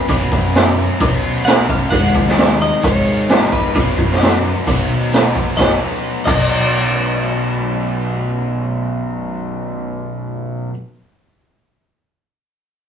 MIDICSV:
0, 0, Header, 1, 6, 480
1, 0, Start_track
1, 0, Key_signature, 5, "major"
1, 0, Tempo, 456969
1, 92, Time_signature, 4, 2, 24, 8
1, 13532, End_track
2, 0, Start_track
2, 0, Title_t, "Clean electric guitar"
2, 0, Program_c, 0, 27
2, 0, Note_on_c, 0, 71, 89
2, 1523, Note_on_c, 0, 78, 103
2, 1593, Note_off_c, 0, 71, 0
2, 1775, Note_off_c, 0, 78, 0
2, 1783, Note_on_c, 0, 77, 97
2, 1997, Note_off_c, 0, 77, 0
2, 2002, Note_on_c, 0, 78, 114
2, 2453, Note_off_c, 0, 78, 0
2, 2752, Note_on_c, 0, 75, 112
2, 2989, Note_off_c, 0, 75, 0
2, 2989, Note_on_c, 0, 73, 110
2, 3535, Note_off_c, 0, 73, 0
2, 3535, Note_on_c, 0, 71, 110
2, 3698, Note_off_c, 0, 71, 0
2, 3702, Note_on_c, 0, 71, 84
2, 5577, Note_off_c, 0, 71, 0
2, 5852, Note_on_c, 0, 75, 87
2, 5987, Note_off_c, 0, 75, 0
2, 6571, Note_on_c, 0, 75, 90
2, 11227, Note_off_c, 0, 75, 0
2, 13532, End_track
3, 0, Start_track
3, 0, Title_t, "Overdriven electric guitar"
3, 0, Program_c, 1, 29
3, 0, Note_on_c, 1, 59, 71
3, 0, Note_on_c, 1, 61, 73
3, 94, Note_on_c, 1, 47, 94
3, 105, Note_on_c, 1, 54, 115
3, 109, Note_off_c, 1, 59, 0
3, 113, Note_off_c, 1, 61, 0
3, 113, Note_on_c, 1, 59, 108
3, 125, Note_on_c, 1, 61, 99
3, 329, Note_off_c, 1, 61, 0
3, 341, Note_on_c, 1, 61, 68
3, 356, Note_off_c, 1, 59, 0
3, 360, Note_on_c, 1, 59, 76
3, 369, Note_off_c, 1, 54, 0
3, 374, Note_on_c, 1, 54, 64
3, 567, Note_off_c, 1, 47, 0
3, 579, Note_on_c, 1, 47, 76
3, 591, Note_off_c, 1, 54, 0
3, 595, Note_on_c, 1, 54, 77
3, 598, Note_off_c, 1, 61, 0
3, 600, Note_off_c, 1, 59, 0
3, 604, Note_on_c, 1, 59, 83
3, 610, Note_on_c, 1, 61, 83
3, 801, Note_off_c, 1, 61, 0
3, 814, Note_on_c, 1, 61, 71
3, 826, Note_off_c, 1, 59, 0
3, 830, Note_on_c, 1, 59, 63
3, 845, Note_off_c, 1, 54, 0
3, 849, Note_on_c, 1, 54, 59
3, 1041, Note_off_c, 1, 47, 0
3, 1054, Note_on_c, 1, 47, 99
3, 1068, Note_off_c, 1, 54, 0
3, 1072, Note_on_c, 1, 54, 94
3, 1076, Note_off_c, 1, 59, 0
3, 1078, Note_off_c, 1, 61, 0
3, 1080, Note_on_c, 1, 59, 113
3, 1090, Note_on_c, 1, 61, 116
3, 1277, Note_off_c, 1, 61, 0
3, 1290, Note_on_c, 1, 61, 62
3, 1303, Note_off_c, 1, 59, 0
3, 1307, Note_on_c, 1, 59, 68
3, 1319, Note_off_c, 1, 54, 0
3, 1323, Note_on_c, 1, 54, 63
3, 1523, Note_off_c, 1, 47, 0
3, 1536, Note_on_c, 1, 47, 71
3, 1540, Note_off_c, 1, 54, 0
3, 1545, Note_on_c, 1, 54, 61
3, 1552, Note_off_c, 1, 61, 0
3, 1553, Note_off_c, 1, 59, 0
3, 1557, Note_on_c, 1, 59, 78
3, 1564, Note_on_c, 1, 61, 81
3, 1759, Note_off_c, 1, 61, 0
3, 1771, Note_on_c, 1, 61, 82
3, 1787, Note_off_c, 1, 59, 0
3, 1791, Note_on_c, 1, 59, 73
3, 1802, Note_off_c, 1, 54, 0
3, 1806, Note_on_c, 1, 54, 66
3, 1998, Note_off_c, 1, 61, 0
3, 2000, Note_off_c, 1, 47, 0
3, 2006, Note_on_c, 1, 44, 90
3, 2015, Note_on_c, 1, 51, 102
3, 2018, Note_off_c, 1, 54, 0
3, 2022, Note_on_c, 1, 56, 101
3, 2025, Note_off_c, 1, 59, 0
3, 2029, Note_on_c, 1, 59, 95
3, 2034, Note_on_c, 1, 63, 98
3, 2248, Note_off_c, 1, 63, 0
3, 2253, Note_on_c, 1, 63, 78
3, 2264, Note_off_c, 1, 59, 0
3, 2268, Note_on_c, 1, 59, 66
3, 2271, Note_off_c, 1, 56, 0
3, 2284, Note_on_c, 1, 56, 58
3, 2477, Note_off_c, 1, 51, 0
3, 2490, Note_off_c, 1, 44, 0
3, 2490, Note_on_c, 1, 51, 80
3, 2493, Note_off_c, 1, 56, 0
3, 2505, Note_on_c, 1, 56, 72
3, 2511, Note_off_c, 1, 59, 0
3, 2515, Note_on_c, 1, 59, 83
3, 2516, Note_off_c, 1, 63, 0
3, 2521, Note_on_c, 1, 63, 83
3, 2730, Note_off_c, 1, 63, 0
3, 2734, Note_on_c, 1, 63, 76
3, 2746, Note_off_c, 1, 59, 0
3, 2750, Note_off_c, 1, 56, 0
3, 2750, Note_on_c, 1, 59, 64
3, 2763, Note_on_c, 1, 56, 56
3, 2967, Note_off_c, 1, 51, 0
3, 2970, Note_on_c, 1, 44, 100
3, 2976, Note_off_c, 1, 56, 0
3, 2979, Note_on_c, 1, 51, 107
3, 2989, Note_on_c, 1, 56, 108
3, 2991, Note_off_c, 1, 59, 0
3, 2995, Note_on_c, 1, 59, 110
3, 2998, Note_off_c, 1, 63, 0
3, 3002, Note_on_c, 1, 63, 116
3, 3209, Note_off_c, 1, 63, 0
3, 3213, Note_on_c, 1, 63, 72
3, 3227, Note_off_c, 1, 59, 0
3, 3231, Note_off_c, 1, 56, 0
3, 3231, Note_on_c, 1, 59, 60
3, 3244, Note_on_c, 1, 56, 64
3, 3436, Note_off_c, 1, 51, 0
3, 3448, Note_on_c, 1, 51, 70
3, 3449, Note_off_c, 1, 56, 0
3, 3452, Note_off_c, 1, 44, 0
3, 3461, Note_on_c, 1, 56, 72
3, 3467, Note_off_c, 1, 59, 0
3, 3472, Note_on_c, 1, 59, 77
3, 3474, Note_off_c, 1, 63, 0
3, 3478, Note_on_c, 1, 63, 79
3, 3688, Note_off_c, 1, 63, 0
3, 3692, Note_on_c, 1, 63, 67
3, 3703, Note_off_c, 1, 59, 0
3, 3708, Note_on_c, 1, 59, 64
3, 3709, Note_off_c, 1, 56, 0
3, 3722, Note_on_c, 1, 56, 61
3, 3917, Note_off_c, 1, 51, 0
3, 3929, Note_on_c, 1, 47, 96
3, 3933, Note_off_c, 1, 56, 0
3, 3941, Note_on_c, 1, 51, 102
3, 3952, Note_off_c, 1, 59, 0
3, 3953, Note_on_c, 1, 54, 101
3, 3957, Note_on_c, 1, 59, 103
3, 3959, Note_off_c, 1, 63, 0
3, 3963, Note_on_c, 1, 63, 101
3, 4164, Note_off_c, 1, 63, 0
3, 4177, Note_on_c, 1, 63, 85
3, 4179, Note_off_c, 1, 59, 0
3, 4192, Note_on_c, 1, 59, 70
3, 4198, Note_off_c, 1, 54, 0
3, 4210, Note_on_c, 1, 54, 58
3, 4400, Note_off_c, 1, 51, 0
3, 4411, Note_off_c, 1, 47, 0
3, 4411, Note_off_c, 1, 54, 0
3, 4413, Note_on_c, 1, 51, 73
3, 4418, Note_off_c, 1, 59, 0
3, 4424, Note_on_c, 1, 54, 78
3, 4426, Note_off_c, 1, 63, 0
3, 4430, Note_on_c, 1, 59, 78
3, 4439, Note_on_c, 1, 63, 83
3, 4643, Note_off_c, 1, 63, 0
3, 4656, Note_on_c, 1, 63, 78
3, 4665, Note_off_c, 1, 59, 0
3, 4673, Note_off_c, 1, 54, 0
3, 4677, Note_on_c, 1, 59, 57
3, 4686, Note_on_c, 1, 54, 62
3, 4882, Note_off_c, 1, 51, 0
3, 4885, Note_on_c, 1, 47, 100
3, 4890, Note_off_c, 1, 54, 0
3, 4895, Note_off_c, 1, 59, 0
3, 4895, Note_on_c, 1, 51, 101
3, 4902, Note_on_c, 1, 54, 106
3, 4903, Note_off_c, 1, 63, 0
3, 4908, Note_on_c, 1, 59, 110
3, 4915, Note_on_c, 1, 63, 99
3, 5126, Note_off_c, 1, 63, 0
3, 5138, Note_on_c, 1, 63, 69
3, 5147, Note_off_c, 1, 59, 0
3, 5157, Note_off_c, 1, 54, 0
3, 5159, Note_on_c, 1, 59, 60
3, 5169, Note_on_c, 1, 54, 52
3, 5367, Note_off_c, 1, 51, 0
3, 5370, Note_off_c, 1, 47, 0
3, 5378, Note_off_c, 1, 54, 0
3, 5379, Note_on_c, 1, 51, 72
3, 5388, Note_off_c, 1, 59, 0
3, 5390, Note_on_c, 1, 54, 63
3, 5398, Note_off_c, 1, 63, 0
3, 5401, Note_on_c, 1, 59, 72
3, 5411, Note_on_c, 1, 63, 79
3, 5605, Note_off_c, 1, 63, 0
3, 5618, Note_off_c, 1, 59, 0
3, 5618, Note_on_c, 1, 63, 71
3, 5630, Note_on_c, 1, 59, 70
3, 5632, Note_off_c, 1, 54, 0
3, 5645, Note_on_c, 1, 54, 61
3, 5842, Note_off_c, 1, 63, 0
3, 5843, Note_off_c, 1, 51, 0
3, 5848, Note_off_c, 1, 59, 0
3, 5855, Note_off_c, 1, 54, 0
3, 5860, Note_on_c, 1, 47, 94
3, 5876, Note_on_c, 1, 54, 93
3, 5887, Note_on_c, 1, 59, 95
3, 5899, Note_on_c, 1, 63, 111
3, 6546, Note_off_c, 1, 47, 0
3, 6546, Note_off_c, 1, 54, 0
3, 6546, Note_off_c, 1, 59, 0
3, 6546, Note_off_c, 1, 63, 0
3, 6569, Note_on_c, 1, 47, 86
3, 6584, Note_on_c, 1, 54, 97
3, 6600, Note_on_c, 1, 59, 98
3, 6610, Note_on_c, 1, 63, 100
3, 11268, Note_off_c, 1, 47, 0
3, 11276, Note_off_c, 1, 54, 0
3, 11284, Note_off_c, 1, 59, 0
3, 11289, Note_off_c, 1, 63, 0
3, 13532, End_track
4, 0, Start_track
4, 0, Title_t, "Overdriven electric guitar"
4, 0, Program_c, 2, 29
4, 829, Note_on_c, 2, 47, 68
4, 1501, Note_off_c, 2, 47, 0
4, 2746, Note_on_c, 2, 51, 73
4, 2750, Note_on_c, 2, 44, 81
4, 3431, Note_off_c, 2, 44, 0
4, 3438, Note_off_c, 2, 51, 0
4, 3444, Note_on_c, 2, 44, 82
4, 3914, Note_off_c, 2, 44, 0
4, 4672, Note_on_c, 2, 51, 81
4, 4676, Note_on_c, 2, 47, 65
4, 5355, Note_off_c, 2, 47, 0
4, 5360, Note_off_c, 2, 51, 0
4, 5367, Note_on_c, 2, 47, 79
4, 5826, Note_off_c, 2, 47, 0
4, 5849, Note_on_c, 2, 51, 92
4, 6535, Note_off_c, 2, 51, 0
4, 6574, Note_on_c, 2, 51, 93
4, 11271, Note_off_c, 2, 51, 0
4, 13532, End_track
5, 0, Start_track
5, 0, Title_t, "Picked electric bass"
5, 0, Program_c, 3, 34
5, 95, Note_on_c, 3, 35, 112
5, 286, Note_off_c, 3, 35, 0
5, 334, Note_on_c, 3, 42, 115
5, 911, Note_off_c, 3, 42, 0
5, 1054, Note_on_c, 3, 35, 90
5, 1823, Note_off_c, 3, 35, 0
5, 2012, Note_on_c, 3, 32, 119
5, 2205, Note_off_c, 3, 32, 0
5, 2253, Note_on_c, 3, 39, 107
5, 2831, Note_off_c, 3, 39, 0
5, 2977, Note_on_c, 3, 32, 87
5, 3745, Note_off_c, 3, 32, 0
5, 3939, Note_on_c, 3, 35, 107
5, 4129, Note_off_c, 3, 35, 0
5, 4179, Note_on_c, 3, 42, 109
5, 4754, Note_off_c, 3, 42, 0
5, 4905, Note_on_c, 3, 35, 81
5, 5671, Note_off_c, 3, 35, 0
5, 5867, Note_on_c, 3, 35, 99
5, 5995, Note_off_c, 3, 35, 0
5, 6581, Note_on_c, 3, 35, 99
5, 11232, Note_off_c, 3, 35, 0
5, 13532, End_track
6, 0, Start_track
6, 0, Title_t, "Drums"
6, 84, Note_on_c, 9, 46, 65
6, 92, Note_on_c, 9, 36, 114
6, 96, Note_on_c, 9, 54, 86
6, 189, Note_off_c, 9, 46, 0
6, 197, Note_off_c, 9, 36, 0
6, 201, Note_off_c, 9, 54, 0
6, 334, Note_on_c, 9, 36, 90
6, 334, Note_on_c, 9, 54, 84
6, 439, Note_off_c, 9, 36, 0
6, 439, Note_off_c, 9, 54, 0
6, 570, Note_on_c, 9, 54, 112
6, 573, Note_on_c, 9, 46, 63
6, 585, Note_on_c, 9, 38, 118
6, 676, Note_off_c, 9, 54, 0
6, 678, Note_off_c, 9, 46, 0
6, 690, Note_off_c, 9, 38, 0
6, 813, Note_on_c, 9, 54, 86
6, 918, Note_off_c, 9, 54, 0
6, 1055, Note_on_c, 9, 46, 72
6, 1056, Note_on_c, 9, 36, 127
6, 1160, Note_off_c, 9, 46, 0
6, 1161, Note_off_c, 9, 36, 0
6, 1532, Note_on_c, 9, 54, 116
6, 1540, Note_on_c, 9, 46, 69
6, 1551, Note_on_c, 9, 38, 119
6, 1637, Note_off_c, 9, 54, 0
6, 1645, Note_off_c, 9, 46, 0
6, 1656, Note_off_c, 9, 38, 0
6, 1775, Note_on_c, 9, 36, 92
6, 1780, Note_on_c, 9, 54, 86
6, 1880, Note_off_c, 9, 36, 0
6, 1885, Note_off_c, 9, 54, 0
6, 2010, Note_on_c, 9, 46, 75
6, 2014, Note_on_c, 9, 54, 79
6, 2015, Note_on_c, 9, 36, 110
6, 2115, Note_off_c, 9, 46, 0
6, 2119, Note_off_c, 9, 54, 0
6, 2120, Note_off_c, 9, 36, 0
6, 2254, Note_on_c, 9, 54, 85
6, 2255, Note_on_c, 9, 36, 88
6, 2359, Note_off_c, 9, 54, 0
6, 2360, Note_off_c, 9, 36, 0
6, 2387, Note_on_c, 9, 38, 36
6, 2492, Note_off_c, 9, 38, 0
6, 2493, Note_on_c, 9, 46, 66
6, 2493, Note_on_c, 9, 54, 114
6, 2505, Note_on_c, 9, 38, 120
6, 2598, Note_off_c, 9, 46, 0
6, 2598, Note_off_c, 9, 54, 0
6, 2610, Note_off_c, 9, 38, 0
6, 2739, Note_on_c, 9, 54, 92
6, 2844, Note_off_c, 9, 54, 0
6, 2978, Note_on_c, 9, 36, 124
6, 2979, Note_on_c, 9, 46, 71
6, 3083, Note_off_c, 9, 36, 0
6, 3084, Note_off_c, 9, 46, 0
6, 3454, Note_on_c, 9, 46, 65
6, 3457, Note_on_c, 9, 54, 121
6, 3465, Note_on_c, 9, 38, 126
6, 3559, Note_off_c, 9, 46, 0
6, 3562, Note_off_c, 9, 54, 0
6, 3570, Note_off_c, 9, 38, 0
6, 3694, Note_on_c, 9, 54, 79
6, 3700, Note_on_c, 9, 36, 93
6, 3799, Note_off_c, 9, 54, 0
6, 3805, Note_off_c, 9, 36, 0
6, 3935, Note_on_c, 9, 54, 77
6, 3937, Note_on_c, 9, 46, 67
6, 3939, Note_on_c, 9, 36, 119
6, 4040, Note_off_c, 9, 54, 0
6, 4042, Note_off_c, 9, 46, 0
6, 4044, Note_off_c, 9, 36, 0
6, 4177, Note_on_c, 9, 54, 82
6, 4180, Note_on_c, 9, 36, 91
6, 4282, Note_off_c, 9, 54, 0
6, 4285, Note_off_c, 9, 36, 0
6, 4299, Note_on_c, 9, 54, 27
6, 4320, Note_on_c, 9, 38, 33
6, 4404, Note_off_c, 9, 54, 0
6, 4411, Note_on_c, 9, 54, 101
6, 4425, Note_off_c, 9, 38, 0
6, 4429, Note_on_c, 9, 46, 61
6, 4440, Note_on_c, 9, 38, 123
6, 4516, Note_off_c, 9, 54, 0
6, 4534, Note_off_c, 9, 46, 0
6, 4545, Note_off_c, 9, 38, 0
6, 4661, Note_on_c, 9, 54, 82
6, 4766, Note_off_c, 9, 54, 0
6, 4904, Note_on_c, 9, 36, 114
6, 4908, Note_on_c, 9, 46, 61
6, 5009, Note_off_c, 9, 36, 0
6, 5013, Note_off_c, 9, 46, 0
6, 5258, Note_on_c, 9, 54, 25
6, 5363, Note_off_c, 9, 54, 0
6, 5375, Note_on_c, 9, 54, 101
6, 5387, Note_on_c, 9, 46, 68
6, 5398, Note_on_c, 9, 38, 127
6, 5480, Note_off_c, 9, 54, 0
6, 5492, Note_off_c, 9, 46, 0
6, 5503, Note_off_c, 9, 38, 0
6, 5617, Note_on_c, 9, 54, 63
6, 5623, Note_on_c, 9, 36, 86
6, 5722, Note_off_c, 9, 54, 0
6, 5728, Note_off_c, 9, 36, 0
6, 5736, Note_on_c, 9, 54, 25
6, 5841, Note_off_c, 9, 54, 0
6, 5853, Note_on_c, 9, 54, 81
6, 5865, Note_on_c, 9, 36, 117
6, 5880, Note_on_c, 9, 38, 92
6, 5958, Note_off_c, 9, 54, 0
6, 5970, Note_off_c, 9, 36, 0
6, 5985, Note_off_c, 9, 38, 0
6, 6573, Note_on_c, 9, 54, 91
6, 6583, Note_on_c, 9, 36, 117
6, 6589, Note_on_c, 9, 49, 101
6, 6678, Note_off_c, 9, 54, 0
6, 6688, Note_off_c, 9, 36, 0
6, 6694, Note_off_c, 9, 49, 0
6, 13532, End_track
0, 0, End_of_file